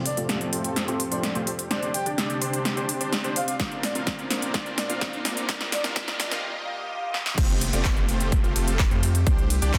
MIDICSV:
0, 0, Header, 1, 9, 480
1, 0, Start_track
1, 0, Key_signature, -1, "major"
1, 0, Tempo, 472441
1, 1735, Time_signature, 4, 2, 24, 8
1, 9939, End_track
2, 0, Start_track
2, 0, Title_t, "Soft synth lead"
2, 0, Program_c, 0, 80
2, 57, Note_on_c, 0, 74, 92
2, 176, Note_off_c, 0, 74, 0
2, 1135, Note_on_c, 0, 74, 83
2, 1212, Note_off_c, 0, 74, 0
2, 1253, Note_on_c, 0, 74, 76
2, 1331, Note_off_c, 0, 74, 0
2, 1733, Note_on_c, 0, 74, 98
2, 1950, Note_off_c, 0, 74, 0
2, 1973, Note_on_c, 0, 79, 90
2, 2094, Note_off_c, 0, 79, 0
2, 3413, Note_on_c, 0, 77, 89
2, 3491, Note_off_c, 0, 77, 0
2, 3534, Note_on_c, 0, 77, 72
2, 3611, Note_off_c, 0, 77, 0
2, 3893, Note_on_c, 0, 74, 82
2, 4014, Note_off_c, 0, 74, 0
2, 4853, Note_on_c, 0, 74, 90
2, 4974, Note_off_c, 0, 74, 0
2, 5813, Note_on_c, 0, 74, 88
2, 5934, Note_off_c, 0, 74, 0
2, 6293, Note_on_c, 0, 74, 95
2, 6414, Note_off_c, 0, 74, 0
2, 9939, End_track
3, 0, Start_track
3, 0, Title_t, "Supersaw synth"
3, 0, Program_c, 1, 81
3, 175, Note_on_c, 1, 57, 83
3, 175, Note_on_c, 1, 60, 75
3, 175, Note_on_c, 1, 65, 77
3, 175, Note_on_c, 1, 67, 72
3, 175, Note_on_c, 1, 74, 92
3, 506, Note_off_c, 1, 57, 0
3, 506, Note_off_c, 1, 60, 0
3, 506, Note_off_c, 1, 65, 0
3, 506, Note_off_c, 1, 67, 0
3, 506, Note_off_c, 1, 74, 0
3, 535, Note_on_c, 1, 57, 73
3, 535, Note_on_c, 1, 65, 65
3, 536, Note_on_c, 1, 60, 66
3, 536, Note_on_c, 1, 67, 64
3, 536, Note_on_c, 1, 72, 83
3, 761, Note_off_c, 1, 57, 0
3, 761, Note_off_c, 1, 60, 0
3, 761, Note_off_c, 1, 65, 0
3, 761, Note_off_c, 1, 67, 0
3, 761, Note_off_c, 1, 72, 0
3, 895, Note_on_c, 1, 60, 76
3, 896, Note_on_c, 1, 57, 81
3, 896, Note_on_c, 1, 65, 75
3, 896, Note_on_c, 1, 67, 74
3, 896, Note_on_c, 1, 72, 89
3, 1037, Note_off_c, 1, 57, 0
3, 1037, Note_off_c, 1, 60, 0
3, 1037, Note_off_c, 1, 65, 0
3, 1037, Note_off_c, 1, 67, 0
3, 1037, Note_off_c, 1, 72, 0
3, 1134, Note_on_c, 1, 57, 77
3, 1134, Note_on_c, 1, 72, 83
3, 1135, Note_on_c, 1, 60, 73
3, 1135, Note_on_c, 1, 65, 69
3, 1135, Note_on_c, 1, 67, 73
3, 1276, Note_off_c, 1, 57, 0
3, 1276, Note_off_c, 1, 60, 0
3, 1276, Note_off_c, 1, 65, 0
3, 1276, Note_off_c, 1, 67, 0
3, 1276, Note_off_c, 1, 72, 0
3, 1375, Note_on_c, 1, 57, 98
3, 1375, Note_on_c, 1, 60, 88
3, 1375, Note_on_c, 1, 65, 85
3, 1375, Note_on_c, 1, 67, 85
3, 1375, Note_on_c, 1, 72, 105
3, 1516, Note_off_c, 1, 57, 0
3, 1516, Note_off_c, 1, 60, 0
3, 1516, Note_off_c, 1, 65, 0
3, 1516, Note_off_c, 1, 67, 0
3, 1516, Note_off_c, 1, 72, 0
3, 1735, Note_on_c, 1, 62, 86
3, 1735, Note_on_c, 1, 67, 80
3, 1735, Note_on_c, 1, 72, 103
3, 1961, Note_off_c, 1, 62, 0
3, 1961, Note_off_c, 1, 67, 0
3, 1961, Note_off_c, 1, 72, 0
3, 2095, Note_on_c, 1, 62, 80
3, 2095, Note_on_c, 1, 67, 71
3, 2095, Note_on_c, 1, 74, 90
3, 2426, Note_off_c, 1, 62, 0
3, 2427, Note_off_c, 1, 67, 0
3, 2427, Note_off_c, 1, 74, 0
3, 2453, Note_on_c, 1, 62, 73
3, 2454, Note_on_c, 1, 67, 70
3, 2454, Note_on_c, 1, 72, 80
3, 2680, Note_off_c, 1, 62, 0
3, 2680, Note_off_c, 1, 67, 0
3, 2681, Note_off_c, 1, 72, 0
3, 2814, Note_on_c, 1, 62, 86
3, 2814, Note_on_c, 1, 67, 74
3, 2814, Note_on_c, 1, 72, 97
3, 2956, Note_off_c, 1, 62, 0
3, 2956, Note_off_c, 1, 67, 0
3, 2956, Note_off_c, 1, 72, 0
3, 3054, Note_on_c, 1, 62, 84
3, 3054, Note_on_c, 1, 67, 74
3, 3054, Note_on_c, 1, 72, 93
3, 3196, Note_off_c, 1, 62, 0
3, 3196, Note_off_c, 1, 67, 0
3, 3196, Note_off_c, 1, 72, 0
3, 3294, Note_on_c, 1, 62, 93
3, 3294, Note_on_c, 1, 67, 86
3, 3294, Note_on_c, 1, 72, 106
3, 3436, Note_off_c, 1, 62, 0
3, 3436, Note_off_c, 1, 67, 0
3, 3436, Note_off_c, 1, 72, 0
3, 3654, Note_on_c, 1, 60, 86
3, 3654, Note_on_c, 1, 62, 77
3, 3654, Note_on_c, 1, 70, 75
3, 3654, Note_on_c, 1, 74, 93
3, 3655, Note_on_c, 1, 65, 75
3, 3880, Note_off_c, 1, 74, 0
3, 3881, Note_off_c, 1, 60, 0
3, 3881, Note_off_c, 1, 62, 0
3, 3881, Note_off_c, 1, 65, 0
3, 3881, Note_off_c, 1, 70, 0
3, 4016, Note_on_c, 1, 60, 78
3, 4016, Note_on_c, 1, 62, 71
3, 4016, Note_on_c, 1, 65, 70
3, 4016, Note_on_c, 1, 70, 69
3, 4016, Note_on_c, 1, 77, 84
3, 4347, Note_off_c, 1, 60, 0
3, 4347, Note_off_c, 1, 62, 0
3, 4347, Note_off_c, 1, 65, 0
3, 4347, Note_off_c, 1, 70, 0
3, 4347, Note_off_c, 1, 77, 0
3, 4376, Note_on_c, 1, 60, 73
3, 4376, Note_on_c, 1, 62, 63
3, 4376, Note_on_c, 1, 65, 64
3, 4376, Note_on_c, 1, 70, 65
3, 4376, Note_on_c, 1, 74, 73
3, 4596, Note_off_c, 1, 60, 0
3, 4596, Note_off_c, 1, 62, 0
3, 4596, Note_off_c, 1, 65, 0
3, 4596, Note_off_c, 1, 70, 0
3, 4597, Note_off_c, 1, 74, 0
3, 4974, Note_on_c, 1, 62, 73
3, 4974, Note_on_c, 1, 65, 74
3, 4974, Note_on_c, 1, 70, 70
3, 4974, Note_on_c, 1, 77, 88
3, 4975, Note_on_c, 1, 60, 77
3, 5306, Note_off_c, 1, 60, 0
3, 5306, Note_off_c, 1, 62, 0
3, 5306, Note_off_c, 1, 65, 0
3, 5306, Note_off_c, 1, 70, 0
3, 5306, Note_off_c, 1, 77, 0
3, 5334, Note_on_c, 1, 62, 66
3, 5334, Note_on_c, 1, 70, 67
3, 5334, Note_on_c, 1, 74, 82
3, 5335, Note_on_c, 1, 60, 75
3, 5335, Note_on_c, 1, 65, 67
3, 5556, Note_off_c, 1, 60, 0
3, 5556, Note_off_c, 1, 62, 0
3, 5556, Note_off_c, 1, 65, 0
3, 5556, Note_off_c, 1, 70, 0
3, 5556, Note_off_c, 1, 74, 0
3, 5574, Note_on_c, 1, 60, 90
3, 5574, Note_on_c, 1, 62, 84
3, 5574, Note_on_c, 1, 65, 80
3, 5574, Note_on_c, 1, 70, 82
3, 5574, Note_on_c, 1, 74, 104
3, 5800, Note_off_c, 1, 60, 0
3, 5800, Note_off_c, 1, 62, 0
3, 5800, Note_off_c, 1, 65, 0
3, 5800, Note_off_c, 1, 70, 0
3, 5800, Note_off_c, 1, 74, 0
3, 5934, Note_on_c, 1, 70, 76
3, 5935, Note_on_c, 1, 60, 81
3, 5935, Note_on_c, 1, 62, 77
3, 5935, Note_on_c, 1, 65, 75
3, 5935, Note_on_c, 1, 77, 94
3, 6036, Note_off_c, 1, 60, 0
3, 6036, Note_off_c, 1, 62, 0
3, 6036, Note_off_c, 1, 65, 0
3, 6036, Note_off_c, 1, 70, 0
3, 6036, Note_off_c, 1, 77, 0
3, 6054, Note_on_c, 1, 62, 93
3, 6054, Note_on_c, 1, 74, 109
3, 6281, Note_off_c, 1, 62, 0
3, 6281, Note_off_c, 1, 74, 0
3, 6415, Note_on_c, 1, 70, 81
3, 6415, Note_on_c, 1, 77, 98
3, 6416, Note_on_c, 1, 60, 86
3, 6416, Note_on_c, 1, 62, 80
3, 6416, Note_on_c, 1, 65, 77
3, 6516, Note_off_c, 1, 62, 0
3, 6516, Note_off_c, 1, 65, 0
3, 6516, Note_off_c, 1, 70, 0
3, 6516, Note_off_c, 1, 77, 0
3, 6517, Note_off_c, 1, 60, 0
3, 7494, Note_on_c, 1, 57, 91
3, 7494, Note_on_c, 1, 60, 83
3, 7494, Note_on_c, 1, 72, 98
3, 7495, Note_on_c, 1, 65, 83
3, 7495, Note_on_c, 1, 67, 85
3, 7720, Note_off_c, 1, 72, 0
3, 7721, Note_off_c, 1, 57, 0
3, 7721, Note_off_c, 1, 60, 0
3, 7721, Note_off_c, 1, 65, 0
3, 7721, Note_off_c, 1, 67, 0
3, 7855, Note_on_c, 1, 57, 87
3, 7855, Note_on_c, 1, 65, 79
3, 7855, Note_on_c, 1, 67, 78
3, 7855, Note_on_c, 1, 74, 94
3, 7856, Note_on_c, 1, 60, 77
3, 8186, Note_off_c, 1, 57, 0
3, 8187, Note_off_c, 1, 60, 0
3, 8187, Note_off_c, 1, 65, 0
3, 8187, Note_off_c, 1, 67, 0
3, 8187, Note_off_c, 1, 74, 0
3, 8214, Note_on_c, 1, 57, 74
3, 8214, Note_on_c, 1, 60, 69
3, 8214, Note_on_c, 1, 67, 69
3, 8214, Note_on_c, 1, 72, 87
3, 8215, Note_on_c, 1, 65, 68
3, 8440, Note_off_c, 1, 67, 0
3, 8441, Note_off_c, 1, 57, 0
3, 8441, Note_off_c, 1, 60, 0
3, 8441, Note_off_c, 1, 65, 0
3, 8441, Note_off_c, 1, 72, 0
3, 8573, Note_on_c, 1, 60, 76
3, 8573, Note_on_c, 1, 67, 77
3, 8574, Note_on_c, 1, 57, 88
3, 8574, Note_on_c, 1, 65, 78
3, 8574, Note_on_c, 1, 72, 93
3, 8670, Note_off_c, 1, 60, 0
3, 8670, Note_off_c, 1, 67, 0
3, 8670, Note_off_c, 1, 72, 0
3, 8671, Note_off_c, 1, 57, 0
3, 8671, Note_off_c, 1, 65, 0
3, 8692, Note_on_c, 1, 57, 81
3, 8692, Note_on_c, 1, 60, 71
3, 8692, Note_on_c, 1, 65, 72
3, 8692, Note_on_c, 1, 67, 73
3, 8692, Note_on_c, 1, 69, 89
3, 8920, Note_off_c, 1, 57, 0
3, 8920, Note_off_c, 1, 60, 0
3, 8920, Note_off_c, 1, 65, 0
3, 8920, Note_off_c, 1, 67, 0
3, 8920, Note_off_c, 1, 69, 0
3, 9054, Note_on_c, 1, 57, 102
3, 9054, Note_on_c, 1, 60, 92
3, 9054, Note_on_c, 1, 65, 91
3, 9054, Note_on_c, 1, 67, 90
3, 9054, Note_on_c, 1, 72, 112
3, 9196, Note_off_c, 1, 57, 0
3, 9196, Note_off_c, 1, 60, 0
3, 9196, Note_off_c, 1, 65, 0
3, 9196, Note_off_c, 1, 67, 0
3, 9196, Note_off_c, 1, 72, 0
3, 9415, Note_on_c, 1, 62, 95
3, 9415, Note_on_c, 1, 67, 85
3, 9415, Note_on_c, 1, 72, 102
3, 9641, Note_off_c, 1, 62, 0
3, 9641, Note_off_c, 1, 67, 0
3, 9641, Note_off_c, 1, 72, 0
3, 9774, Note_on_c, 1, 62, 82
3, 9775, Note_on_c, 1, 67, 77
3, 9775, Note_on_c, 1, 74, 94
3, 9939, Note_off_c, 1, 62, 0
3, 9939, Note_off_c, 1, 67, 0
3, 9939, Note_off_c, 1, 74, 0
3, 9939, End_track
4, 0, Start_track
4, 0, Title_t, "Analog synth pad"
4, 0, Program_c, 2, 89
4, 0, Note_on_c, 2, 53, 81
4, 0, Note_on_c, 2, 60, 74
4, 0, Note_on_c, 2, 67, 75
4, 0, Note_on_c, 2, 69, 91
4, 1714, Note_off_c, 2, 69, 0
4, 1715, Note_off_c, 2, 53, 0
4, 1715, Note_off_c, 2, 60, 0
4, 1734, Note_on_c, 2, 48, 80
4, 1734, Note_on_c, 2, 60, 75
4, 1735, Note_on_c, 2, 74, 92
4, 3616, Note_off_c, 2, 67, 0
4, 3635, Note_off_c, 2, 48, 0
4, 3635, Note_off_c, 2, 60, 0
4, 3653, Note_on_c, 2, 46, 82
4, 3653, Note_on_c, 2, 72, 75
4, 3654, Note_on_c, 2, 58, 79
4, 5537, Note_off_c, 2, 74, 0
4, 5555, Note_off_c, 2, 46, 0
4, 5555, Note_off_c, 2, 72, 0
4, 5574, Note_on_c, 2, 51, 82
4, 5575, Note_on_c, 2, 75, 95
4, 5576, Note_on_c, 2, 67, 75
4, 7456, Note_off_c, 2, 58, 0
4, 7476, Note_off_c, 2, 51, 0
4, 7476, Note_off_c, 2, 67, 0
4, 7476, Note_off_c, 2, 75, 0
4, 7496, Note_on_c, 2, 65, 75
4, 7497, Note_on_c, 2, 57, 84
4, 7497, Note_on_c, 2, 67, 93
4, 9396, Note_off_c, 2, 65, 0
4, 9397, Note_off_c, 2, 57, 0
4, 9414, Note_on_c, 2, 60, 84
4, 9414, Note_on_c, 2, 62, 77
4, 9939, Note_off_c, 2, 60, 0
4, 9939, Note_off_c, 2, 62, 0
4, 9939, Note_off_c, 2, 67, 0
4, 9939, End_track
5, 0, Start_track
5, 0, Title_t, "Sub bass"
5, 0, Program_c, 3, 38
5, 7495, Note_on_c, 3, 29, 106
5, 7831, Note_off_c, 3, 29, 0
5, 7855, Note_on_c, 3, 29, 98
5, 8191, Note_off_c, 3, 29, 0
5, 8215, Note_on_c, 3, 29, 101
5, 8551, Note_off_c, 3, 29, 0
5, 8575, Note_on_c, 3, 29, 92
5, 8671, Note_off_c, 3, 29, 0
5, 8694, Note_on_c, 3, 29, 97
5, 9031, Note_off_c, 3, 29, 0
5, 9055, Note_on_c, 3, 41, 96
5, 9391, Note_off_c, 3, 41, 0
5, 9415, Note_on_c, 3, 36, 103
5, 9751, Note_off_c, 3, 36, 0
5, 9776, Note_on_c, 3, 36, 98
5, 9939, Note_off_c, 3, 36, 0
5, 9939, End_track
6, 0, Start_track
6, 0, Title_t, "Downlifter"
6, 0, Program_c, 4, 103
6, 7495, Note_on_c, 4, 60, 77
6, 9939, Note_off_c, 4, 60, 0
6, 9939, End_track
7, 0, Start_track
7, 0, Title_t, "Riser"
7, 0, Program_c, 5, 103
7, 0, Note_on_c, 5, 60, 73
7, 6535, Note_off_c, 5, 60, 0
7, 9939, End_track
8, 0, Start_track
8, 0, Title_t, "Swell"
8, 0, Program_c, 6, 103
8, 6535, Note_on_c, 6, 60, 76
8, 7495, Note_off_c, 6, 60, 0
8, 9939, End_track
9, 0, Start_track
9, 0, Title_t, "Drums"
9, 56, Note_on_c, 9, 46, 97
9, 158, Note_off_c, 9, 46, 0
9, 176, Note_on_c, 9, 42, 49
9, 277, Note_off_c, 9, 42, 0
9, 295, Note_on_c, 9, 38, 50
9, 295, Note_on_c, 9, 42, 50
9, 396, Note_off_c, 9, 38, 0
9, 396, Note_off_c, 9, 42, 0
9, 416, Note_on_c, 9, 42, 26
9, 517, Note_off_c, 9, 42, 0
9, 536, Note_on_c, 9, 46, 87
9, 637, Note_off_c, 9, 46, 0
9, 655, Note_on_c, 9, 42, 52
9, 756, Note_off_c, 9, 42, 0
9, 775, Note_on_c, 9, 38, 50
9, 775, Note_on_c, 9, 42, 54
9, 877, Note_off_c, 9, 38, 0
9, 877, Note_off_c, 9, 42, 0
9, 895, Note_on_c, 9, 42, 26
9, 996, Note_off_c, 9, 42, 0
9, 1014, Note_on_c, 9, 46, 100
9, 1116, Note_off_c, 9, 46, 0
9, 1134, Note_on_c, 9, 42, 52
9, 1236, Note_off_c, 9, 42, 0
9, 1254, Note_on_c, 9, 38, 52
9, 1254, Note_on_c, 9, 42, 53
9, 1356, Note_off_c, 9, 38, 0
9, 1356, Note_off_c, 9, 42, 0
9, 1374, Note_on_c, 9, 42, 26
9, 1476, Note_off_c, 9, 42, 0
9, 1494, Note_on_c, 9, 46, 86
9, 1596, Note_off_c, 9, 46, 0
9, 1614, Note_on_c, 9, 42, 51
9, 1716, Note_off_c, 9, 42, 0
9, 1734, Note_on_c, 9, 38, 55
9, 1734, Note_on_c, 9, 42, 53
9, 1836, Note_off_c, 9, 38, 0
9, 1836, Note_off_c, 9, 42, 0
9, 1855, Note_on_c, 9, 42, 24
9, 1956, Note_off_c, 9, 42, 0
9, 1974, Note_on_c, 9, 46, 102
9, 2076, Note_off_c, 9, 46, 0
9, 2095, Note_on_c, 9, 42, 50
9, 2197, Note_off_c, 9, 42, 0
9, 2215, Note_on_c, 9, 38, 63
9, 2215, Note_on_c, 9, 42, 52
9, 2317, Note_off_c, 9, 38, 0
9, 2317, Note_off_c, 9, 42, 0
9, 2335, Note_on_c, 9, 42, 24
9, 2437, Note_off_c, 9, 42, 0
9, 2454, Note_on_c, 9, 46, 89
9, 2556, Note_off_c, 9, 46, 0
9, 2575, Note_on_c, 9, 42, 51
9, 2677, Note_off_c, 9, 42, 0
9, 2695, Note_on_c, 9, 38, 62
9, 2695, Note_on_c, 9, 42, 52
9, 2796, Note_off_c, 9, 38, 0
9, 2796, Note_off_c, 9, 42, 0
9, 2815, Note_on_c, 9, 42, 26
9, 2917, Note_off_c, 9, 42, 0
9, 2935, Note_on_c, 9, 46, 107
9, 3037, Note_off_c, 9, 46, 0
9, 3056, Note_on_c, 9, 42, 51
9, 3157, Note_off_c, 9, 42, 0
9, 3176, Note_on_c, 9, 38, 65
9, 3176, Note_on_c, 9, 42, 53
9, 3277, Note_off_c, 9, 38, 0
9, 3277, Note_off_c, 9, 42, 0
9, 3295, Note_on_c, 9, 42, 24
9, 3396, Note_off_c, 9, 42, 0
9, 3415, Note_on_c, 9, 46, 94
9, 3516, Note_off_c, 9, 46, 0
9, 3535, Note_on_c, 9, 42, 52
9, 3636, Note_off_c, 9, 42, 0
9, 3654, Note_on_c, 9, 36, 117
9, 3655, Note_on_c, 9, 38, 72
9, 3655, Note_on_c, 9, 42, 52
9, 3755, Note_off_c, 9, 36, 0
9, 3756, Note_off_c, 9, 38, 0
9, 3756, Note_off_c, 9, 42, 0
9, 3775, Note_on_c, 9, 42, 24
9, 3877, Note_off_c, 9, 42, 0
9, 3895, Note_on_c, 9, 38, 76
9, 3895, Note_on_c, 9, 46, 112
9, 3997, Note_off_c, 9, 38, 0
9, 3997, Note_off_c, 9, 46, 0
9, 4015, Note_on_c, 9, 42, 51
9, 4117, Note_off_c, 9, 42, 0
9, 4134, Note_on_c, 9, 36, 118
9, 4135, Note_on_c, 9, 38, 79
9, 4135, Note_on_c, 9, 42, 50
9, 4235, Note_off_c, 9, 36, 0
9, 4236, Note_off_c, 9, 38, 0
9, 4236, Note_off_c, 9, 42, 0
9, 4254, Note_on_c, 9, 42, 26
9, 4356, Note_off_c, 9, 42, 0
9, 4374, Note_on_c, 9, 38, 81
9, 4374, Note_on_c, 9, 46, 96
9, 4476, Note_off_c, 9, 38, 0
9, 4476, Note_off_c, 9, 46, 0
9, 4494, Note_on_c, 9, 42, 52
9, 4595, Note_off_c, 9, 42, 0
9, 4614, Note_on_c, 9, 36, 122
9, 4614, Note_on_c, 9, 38, 84
9, 4614, Note_on_c, 9, 42, 51
9, 4716, Note_off_c, 9, 36, 0
9, 4716, Note_off_c, 9, 38, 0
9, 4716, Note_off_c, 9, 42, 0
9, 4735, Note_on_c, 9, 42, 25
9, 4836, Note_off_c, 9, 42, 0
9, 4854, Note_on_c, 9, 38, 84
9, 4854, Note_on_c, 9, 46, 106
9, 4956, Note_off_c, 9, 38, 0
9, 4956, Note_off_c, 9, 46, 0
9, 4974, Note_on_c, 9, 42, 52
9, 5076, Note_off_c, 9, 42, 0
9, 5094, Note_on_c, 9, 36, 120
9, 5095, Note_on_c, 9, 38, 87
9, 5095, Note_on_c, 9, 42, 53
9, 5196, Note_off_c, 9, 36, 0
9, 5196, Note_off_c, 9, 38, 0
9, 5196, Note_off_c, 9, 42, 0
9, 5215, Note_on_c, 9, 42, 24
9, 5316, Note_off_c, 9, 42, 0
9, 5334, Note_on_c, 9, 38, 85
9, 5334, Note_on_c, 9, 46, 97
9, 5436, Note_off_c, 9, 38, 0
9, 5436, Note_off_c, 9, 46, 0
9, 5455, Note_on_c, 9, 42, 51
9, 5557, Note_off_c, 9, 42, 0
9, 5575, Note_on_c, 9, 36, 115
9, 5575, Note_on_c, 9, 38, 97
9, 5575, Note_on_c, 9, 42, 50
9, 5676, Note_off_c, 9, 36, 0
9, 5677, Note_off_c, 9, 38, 0
9, 5677, Note_off_c, 9, 42, 0
9, 5695, Note_on_c, 9, 38, 78
9, 5695, Note_on_c, 9, 42, 23
9, 5797, Note_off_c, 9, 38, 0
9, 5797, Note_off_c, 9, 42, 0
9, 5815, Note_on_c, 9, 38, 93
9, 5815, Note_on_c, 9, 46, 108
9, 5916, Note_off_c, 9, 38, 0
9, 5916, Note_off_c, 9, 46, 0
9, 5935, Note_on_c, 9, 38, 81
9, 5935, Note_on_c, 9, 42, 52
9, 6037, Note_off_c, 9, 38, 0
9, 6037, Note_off_c, 9, 42, 0
9, 6055, Note_on_c, 9, 36, 126
9, 6056, Note_on_c, 9, 38, 103
9, 6056, Note_on_c, 9, 42, 52
9, 6156, Note_off_c, 9, 36, 0
9, 6157, Note_off_c, 9, 38, 0
9, 6157, Note_off_c, 9, 42, 0
9, 6176, Note_on_c, 9, 38, 82
9, 6176, Note_on_c, 9, 42, 24
9, 6277, Note_off_c, 9, 38, 0
9, 6277, Note_off_c, 9, 42, 0
9, 6296, Note_on_c, 9, 38, 100
9, 6296, Note_on_c, 9, 46, 94
9, 6397, Note_off_c, 9, 38, 0
9, 6397, Note_off_c, 9, 46, 0
9, 6416, Note_on_c, 9, 38, 90
9, 6416, Note_on_c, 9, 42, 52
9, 6517, Note_off_c, 9, 38, 0
9, 6517, Note_off_c, 9, 42, 0
9, 7256, Note_on_c, 9, 38, 61
9, 7358, Note_off_c, 9, 38, 0
9, 7376, Note_on_c, 9, 38, 73
9, 7477, Note_off_c, 9, 38, 0
9, 7495, Note_on_c, 9, 36, 117
9, 7496, Note_on_c, 9, 42, 58
9, 7496, Note_on_c, 9, 49, 107
9, 7597, Note_off_c, 9, 36, 0
9, 7598, Note_off_c, 9, 42, 0
9, 7598, Note_off_c, 9, 49, 0
9, 7615, Note_on_c, 9, 42, 26
9, 7716, Note_off_c, 9, 42, 0
9, 7735, Note_on_c, 9, 46, 102
9, 7735, Note_on_c, 9, 51, 76
9, 7837, Note_off_c, 9, 46, 0
9, 7837, Note_off_c, 9, 51, 0
9, 7855, Note_on_c, 9, 42, 55
9, 7956, Note_off_c, 9, 42, 0
9, 7972, Note_on_c, 9, 39, 125
9, 7975, Note_on_c, 9, 36, 119
9, 7975, Note_on_c, 9, 42, 55
9, 8074, Note_off_c, 9, 39, 0
9, 8076, Note_off_c, 9, 36, 0
9, 8076, Note_off_c, 9, 42, 0
9, 8095, Note_on_c, 9, 42, 26
9, 8196, Note_off_c, 9, 42, 0
9, 8215, Note_on_c, 9, 46, 96
9, 8215, Note_on_c, 9, 51, 80
9, 8317, Note_off_c, 9, 46, 0
9, 8317, Note_off_c, 9, 51, 0
9, 8335, Note_on_c, 9, 42, 58
9, 8437, Note_off_c, 9, 42, 0
9, 8455, Note_on_c, 9, 36, 119
9, 8456, Note_on_c, 9, 42, 56
9, 8557, Note_off_c, 9, 36, 0
9, 8557, Note_off_c, 9, 42, 0
9, 8576, Note_on_c, 9, 42, 26
9, 8677, Note_off_c, 9, 42, 0
9, 8696, Note_on_c, 9, 46, 103
9, 8696, Note_on_c, 9, 51, 79
9, 8797, Note_off_c, 9, 46, 0
9, 8797, Note_off_c, 9, 51, 0
9, 8814, Note_on_c, 9, 42, 54
9, 8916, Note_off_c, 9, 42, 0
9, 8932, Note_on_c, 9, 39, 122
9, 8935, Note_on_c, 9, 36, 118
9, 8935, Note_on_c, 9, 42, 54
9, 9034, Note_off_c, 9, 39, 0
9, 9037, Note_off_c, 9, 36, 0
9, 9037, Note_off_c, 9, 42, 0
9, 9055, Note_on_c, 9, 42, 27
9, 9157, Note_off_c, 9, 42, 0
9, 9175, Note_on_c, 9, 46, 92
9, 9175, Note_on_c, 9, 51, 77
9, 9276, Note_off_c, 9, 46, 0
9, 9276, Note_off_c, 9, 51, 0
9, 9295, Note_on_c, 9, 42, 56
9, 9396, Note_off_c, 9, 42, 0
9, 9415, Note_on_c, 9, 36, 117
9, 9415, Note_on_c, 9, 42, 53
9, 9516, Note_off_c, 9, 36, 0
9, 9516, Note_off_c, 9, 42, 0
9, 9535, Note_on_c, 9, 42, 26
9, 9636, Note_off_c, 9, 42, 0
9, 9655, Note_on_c, 9, 46, 107
9, 9655, Note_on_c, 9, 51, 72
9, 9756, Note_off_c, 9, 46, 0
9, 9756, Note_off_c, 9, 51, 0
9, 9775, Note_on_c, 9, 42, 54
9, 9876, Note_off_c, 9, 42, 0
9, 9892, Note_on_c, 9, 39, 125
9, 9894, Note_on_c, 9, 42, 57
9, 9895, Note_on_c, 9, 36, 127
9, 9939, Note_off_c, 9, 36, 0
9, 9939, Note_off_c, 9, 39, 0
9, 9939, Note_off_c, 9, 42, 0
9, 9939, End_track
0, 0, End_of_file